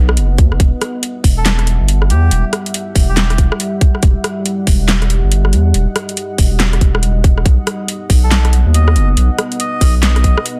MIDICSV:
0, 0, Header, 1, 5, 480
1, 0, Start_track
1, 0, Key_signature, 1, "minor"
1, 0, Tempo, 428571
1, 672, Time_signature, 4, 2, 24, 8
1, 11869, End_track
2, 0, Start_track
2, 0, Title_t, "Ambient pad"
2, 0, Program_c, 0, 92
2, 0, Note_on_c, 0, 59, 84
2, 0, Note_on_c, 0, 75, 93
2, 0, Note_on_c, 0, 78, 73
2, 624, Note_off_c, 0, 59, 0
2, 625, Note_off_c, 0, 75, 0
2, 626, Note_off_c, 0, 78, 0
2, 667, Note_on_c, 0, 55, 84
2, 668, Note_on_c, 0, 76, 91
2, 668, Note_on_c, 0, 78, 76
2, 4472, Note_off_c, 0, 76, 0
2, 4514, Note_on_c, 0, 75, 92
2, 8305, Note_off_c, 0, 55, 0
2, 8351, Note_on_c, 0, 59, 84
2, 11869, Note_off_c, 0, 59, 0
2, 11869, Note_off_c, 0, 75, 0
2, 11869, Note_off_c, 0, 78, 0
2, 11869, End_track
3, 0, Start_track
3, 0, Title_t, "Melodica"
3, 0, Program_c, 1, 22
3, 1539, Note_on_c, 1, 69, 93
3, 1871, Note_off_c, 1, 69, 0
3, 2354, Note_on_c, 1, 67, 95
3, 2742, Note_off_c, 1, 67, 0
3, 3460, Note_on_c, 1, 67, 93
3, 3792, Note_off_c, 1, 67, 0
3, 9224, Note_on_c, 1, 69, 94
3, 9554, Note_off_c, 1, 69, 0
3, 9789, Note_on_c, 1, 75, 95
3, 10179, Note_off_c, 1, 75, 0
3, 10751, Note_on_c, 1, 75, 96
3, 11140, Note_off_c, 1, 75, 0
3, 11231, Note_on_c, 1, 75, 99
3, 11712, Note_off_c, 1, 75, 0
3, 11869, End_track
4, 0, Start_track
4, 0, Title_t, "Sub bass"
4, 0, Program_c, 2, 38
4, 0, Note_on_c, 2, 35, 96
4, 195, Note_on_c, 2, 30, 86
4, 212, Note_off_c, 2, 35, 0
4, 433, Note_on_c, 2, 39, 89
4, 450, Note_off_c, 2, 30, 0
4, 569, Note_off_c, 2, 39, 0
4, 583, Note_on_c, 2, 30, 98
4, 666, Note_off_c, 2, 30, 0
4, 672, Note_on_c, 2, 28, 100
4, 809, Note_off_c, 2, 28, 0
4, 1391, Note_on_c, 2, 28, 99
4, 2001, Note_off_c, 2, 28, 0
4, 2021, Note_on_c, 2, 31, 98
4, 2351, Note_on_c, 2, 40, 86
4, 2368, Note_off_c, 2, 31, 0
4, 2577, Note_off_c, 2, 40, 0
4, 2592, Note_on_c, 2, 28, 101
4, 2729, Note_off_c, 2, 28, 0
4, 3311, Note_on_c, 2, 28, 101
4, 3921, Note_off_c, 2, 28, 0
4, 4512, Note_on_c, 2, 28, 101
4, 4649, Note_off_c, 2, 28, 0
4, 5233, Note_on_c, 2, 28, 103
4, 5842, Note_off_c, 2, 28, 0
4, 5861, Note_on_c, 2, 31, 100
4, 6193, Note_on_c, 2, 40, 87
4, 6210, Note_off_c, 2, 31, 0
4, 6418, Note_off_c, 2, 40, 0
4, 6434, Note_on_c, 2, 28, 96
4, 6570, Note_off_c, 2, 28, 0
4, 7151, Note_on_c, 2, 28, 96
4, 7624, Note_off_c, 2, 28, 0
4, 7631, Note_on_c, 2, 28, 94
4, 8340, Note_off_c, 2, 28, 0
4, 8350, Note_on_c, 2, 35, 98
4, 8488, Note_off_c, 2, 35, 0
4, 9070, Note_on_c, 2, 35, 99
4, 9681, Note_off_c, 2, 35, 0
4, 9700, Note_on_c, 2, 39, 97
4, 10034, Note_on_c, 2, 30, 87
4, 10051, Note_off_c, 2, 39, 0
4, 10258, Note_off_c, 2, 30, 0
4, 10271, Note_on_c, 2, 35, 98
4, 10409, Note_off_c, 2, 35, 0
4, 10990, Note_on_c, 2, 35, 94
4, 11601, Note_off_c, 2, 35, 0
4, 11869, End_track
5, 0, Start_track
5, 0, Title_t, "Drums"
5, 99, Note_on_c, 9, 37, 82
5, 191, Note_on_c, 9, 42, 80
5, 211, Note_off_c, 9, 37, 0
5, 303, Note_off_c, 9, 42, 0
5, 430, Note_on_c, 9, 42, 55
5, 431, Note_on_c, 9, 36, 101
5, 542, Note_off_c, 9, 42, 0
5, 543, Note_off_c, 9, 36, 0
5, 580, Note_on_c, 9, 37, 53
5, 670, Note_on_c, 9, 36, 117
5, 671, Note_on_c, 9, 42, 80
5, 692, Note_off_c, 9, 37, 0
5, 782, Note_off_c, 9, 36, 0
5, 783, Note_off_c, 9, 42, 0
5, 913, Note_on_c, 9, 37, 75
5, 913, Note_on_c, 9, 42, 54
5, 1025, Note_off_c, 9, 37, 0
5, 1025, Note_off_c, 9, 42, 0
5, 1152, Note_on_c, 9, 42, 87
5, 1264, Note_off_c, 9, 42, 0
5, 1390, Note_on_c, 9, 36, 59
5, 1391, Note_on_c, 9, 46, 90
5, 1502, Note_off_c, 9, 36, 0
5, 1503, Note_off_c, 9, 46, 0
5, 1631, Note_on_c, 9, 38, 123
5, 1631, Note_on_c, 9, 39, 100
5, 1631, Note_on_c, 9, 42, 87
5, 1743, Note_off_c, 9, 38, 0
5, 1743, Note_off_c, 9, 39, 0
5, 1743, Note_off_c, 9, 42, 0
5, 1779, Note_on_c, 9, 37, 50
5, 1779, Note_on_c, 9, 42, 37
5, 1871, Note_off_c, 9, 42, 0
5, 1871, Note_on_c, 9, 42, 60
5, 1891, Note_off_c, 9, 37, 0
5, 1983, Note_off_c, 9, 42, 0
5, 2111, Note_on_c, 9, 42, 83
5, 2223, Note_off_c, 9, 42, 0
5, 2259, Note_on_c, 9, 37, 60
5, 2353, Note_on_c, 9, 42, 55
5, 2371, Note_off_c, 9, 37, 0
5, 2465, Note_off_c, 9, 42, 0
5, 2591, Note_on_c, 9, 42, 75
5, 2703, Note_off_c, 9, 42, 0
5, 2832, Note_on_c, 9, 37, 79
5, 2832, Note_on_c, 9, 42, 53
5, 2944, Note_off_c, 9, 37, 0
5, 2944, Note_off_c, 9, 42, 0
5, 2982, Note_on_c, 9, 42, 38
5, 3072, Note_off_c, 9, 42, 0
5, 3072, Note_on_c, 9, 42, 83
5, 3184, Note_off_c, 9, 42, 0
5, 3310, Note_on_c, 9, 36, 66
5, 3311, Note_on_c, 9, 46, 86
5, 3422, Note_off_c, 9, 36, 0
5, 3423, Note_off_c, 9, 46, 0
5, 3549, Note_on_c, 9, 38, 127
5, 3549, Note_on_c, 9, 39, 99
5, 3549, Note_on_c, 9, 42, 87
5, 3661, Note_off_c, 9, 38, 0
5, 3661, Note_off_c, 9, 39, 0
5, 3661, Note_off_c, 9, 42, 0
5, 3699, Note_on_c, 9, 37, 51
5, 3699, Note_on_c, 9, 42, 39
5, 3790, Note_off_c, 9, 42, 0
5, 3790, Note_on_c, 9, 42, 61
5, 3791, Note_on_c, 9, 36, 63
5, 3811, Note_off_c, 9, 37, 0
5, 3902, Note_off_c, 9, 42, 0
5, 3903, Note_off_c, 9, 36, 0
5, 3941, Note_on_c, 9, 37, 78
5, 4031, Note_on_c, 9, 42, 80
5, 4053, Note_off_c, 9, 37, 0
5, 4143, Note_off_c, 9, 42, 0
5, 4271, Note_on_c, 9, 36, 105
5, 4271, Note_on_c, 9, 42, 57
5, 4383, Note_off_c, 9, 36, 0
5, 4383, Note_off_c, 9, 42, 0
5, 4421, Note_on_c, 9, 37, 51
5, 4509, Note_on_c, 9, 42, 75
5, 4511, Note_on_c, 9, 36, 125
5, 4533, Note_off_c, 9, 37, 0
5, 4621, Note_off_c, 9, 42, 0
5, 4623, Note_off_c, 9, 36, 0
5, 4751, Note_on_c, 9, 37, 77
5, 4751, Note_on_c, 9, 42, 52
5, 4863, Note_off_c, 9, 37, 0
5, 4863, Note_off_c, 9, 42, 0
5, 4991, Note_on_c, 9, 42, 79
5, 5103, Note_off_c, 9, 42, 0
5, 5231, Note_on_c, 9, 46, 89
5, 5232, Note_on_c, 9, 36, 65
5, 5343, Note_off_c, 9, 46, 0
5, 5344, Note_off_c, 9, 36, 0
5, 5471, Note_on_c, 9, 38, 127
5, 5471, Note_on_c, 9, 39, 96
5, 5471, Note_on_c, 9, 42, 78
5, 5583, Note_off_c, 9, 38, 0
5, 5583, Note_off_c, 9, 39, 0
5, 5583, Note_off_c, 9, 42, 0
5, 5622, Note_on_c, 9, 37, 53
5, 5622, Note_on_c, 9, 42, 37
5, 5712, Note_off_c, 9, 42, 0
5, 5712, Note_on_c, 9, 42, 60
5, 5734, Note_off_c, 9, 37, 0
5, 5824, Note_off_c, 9, 42, 0
5, 5954, Note_on_c, 9, 42, 79
5, 6066, Note_off_c, 9, 42, 0
5, 6101, Note_on_c, 9, 37, 63
5, 6192, Note_on_c, 9, 42, 54
5, 6213, Note_off_c, 9, 37, 0
5, 6304, Note_off_c, 9, 42, 0
5, 6431, Note_on_c, 9, 42, 76
5, 6543, Note_off_c, 9, 42, 0
5, 6672, Note_on_c, 9, 37, 80
5, 6672, Note_on_c, 9, 42, 50
5, 6784, Note_off_c, 9, 37, 0
5, 6784, Note_off_c, 9, 42, 0
5, 6820, Note_on_c, 9, 42, 35
5, 6911, Note_off_c, 9, 42, 0
5, 6911, Note_on_c, 9, 42, 76
5, 7023, Note_off_c, 9, 42, 0
5, 7150, Note_on_c, 9, 36, 64
5, 7150, Note_on_c, 9, 46, 92
5, 7262, Note_off_c, 9, 36, 0
5, 7262, Note_off_c, 9, 46, 0
5, 7389, Note_on_c, 9, 38, 127
5, 7389, Note_on_c, 9, 39, 95
5, 7389, Note_on_c, 9, 42, 79
5, 7501, Note_off_c, 9, 38, 0
5, 7501, Note_off_c, 9, 39, 0
5, 7501, Note_off_c, 9, 42, 0
5, 7540, Note_on_c, 9, 37, 54
5, 7540, Note_on_c, 9, 42, 36
5, 7630, Note_off_c, 9, 42, 0
5, 7630, Note_on_c, 9, 36, 62
5, 7630, Note_on_c, 9, 42, 52
5, 7652, Note_off_c, 9, 37, 0
5, 7742, Note_off_c, 9, 36, 0
5, 7742, Note_off_c, 9, 42, 0
5, 7781, Note_on_c, 9, 37, 79
5, 7871, Note_on_c, 9, 42, 75
5, 7893, Note_off_c, 9, 37, 0
5, 7983, Note_off_c, 9, 42, 0
5, 8110, Note_on_c, 9, 36, 107
5, 8111, Note_on_c, 9, 42, 50
5, 8222, Note_off_c, 9, 36, 0
5, 8223, Note_off_c, 9, 42, 0
5, 8261, Note_on_c, 9, 37, 55
5, 8350, Note_on_c, 9, 36, 116
5, 8351, Note_on_c, 9, 42, 73
5, 8373, Note_off_c, 9, 37, 0
5, 8462, Note_off_c, 9, 36, 0
5, 8463, Note_off_c, 9, 42, 0
5, 8590, Note_on_c, 9, 37, 83
5, 8590, Note_on_c, 9, 42, 53
5, 8702, Note_off_c, 9, 37, 0
5, 8702, Note_off_c, 9, 42, 0
5, 8830, Note_on_c, 9, 42, 79
5, 8942, Note_off_c, 9, 42, 0
5, 9069, Note_on_c, 9, 36, 65
5, 9071, Note_on_c, 9, 46, 93
5, 9181, Note_off_c, 9, 36, 0
5, 9183, Note_off_c, 9, 46, 0
5, 9312, Note_on_c, 9, 38, 125
5, 9312, Note_on_c, 9, 39, 94
5, 9312, Note_on_c, 9, 42, 81
5, 9424, Note_off_c, 9, 38, 0
5, 9424, Note_off_c, 9, 39, 0
5, 9424, Note_off_c, 9, 42, 0
5, 9462, Note_on_c, 9, 37, 58
5, 9462, Note_on_c, 9, 42, 37
5, 9553, Note_off_c, 9, 42, 0
5, 9553, Note_on_c, 9, 42, 55
5, 9574, Note_off_c, 9, 37, 0
5, 9665, Note_off_c, 9, 42, 0
5, 9793, Note_on_c, 9, 42, 77
5, 9905, Note_off_c, 9, 42, 0
5, 9942, Note_on_c, 9, 37, 67
5, 10033, Note_on_c, 9, 42, 52
5, 10054, Note_off_c, 9, 37, 0
5, 10145, Note_off_c, 9, 42, 0
5, 10271, Note_on_c, 9, 42, 70
5, 10383, Note_off_c, 9, 42, 0
5, 10511, Note_on_c, 9, 37, 88
5, 10511, Note_on_c, 9, 42, 53
5, 10623, Note_off_c, 9, 37, 0
5, 10623, Note_off_c, 9, 42, 0
5, 10659, Note_on_c, 9, 42, 34
5, 10749, Note_off_c, 9, 42, 0
5, 10749, Note_on_c, 9, 42, 79
5, 10861, Note_off_c, 9, 42, 0
5, 10989, Note_on_c, 9, 36, 62
5, 10990, Note_on_c, 9, 46, 98
5, 11101, Note_off_c, 9, 36, 0
5, 11102, Note_off_c, 9, 46, 0
5, 11230, Note_on_c, 9, 38, 123
5, 11230, Note_on_c, 9, 39, 89
5, 11230, Note_on_c, 9, 42, 83
5, 11342, Note_off_c, 9, 38, 0
5, 11342, Note_off_c, 9, 39, 0
5, 11342, Note_off_c, 9, 42, 0
5, 11380, Note_on_c, 9, 37, 58
5, 11380, Note_on_c, 9, 42, 37
5, 11470, Note_off_c, 9, 42, 0
5, 11470, Note_on_c, 9, 36, 59
5, 11470, Note_on_c, 9, 42, 57
5, 11492, Note_off_c, 9, 37, 0
5, 11582, Note_off_c, 9, 36, 0
5, 11582, Note_off_c, 9, 42, 0
5, 11620, Note_on_c, 9, 37, 91
5, 11711, Note_on_c, 9, 42, 79
5, 11732, Note_off_c, 9, 37, 0
5, 11823, Note_off_c, 9, 42, 0
5, 11869, End_track
0, 0, End_of_file